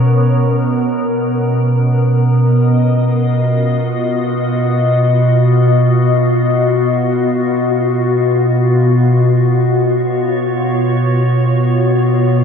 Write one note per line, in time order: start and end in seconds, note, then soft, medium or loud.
0.00 12.44 B2 medium
0.00 12.44 B3 medium
0.00 3.68 C#4 medium
0.00 2.80 A#4 medium
0.00 1.75 C#5 medium
2.14 9.87 D#5 medium
2.79 12.44 F4 medium
3.16 12.44 F#4 medium
9.64 12.44 C#5 medium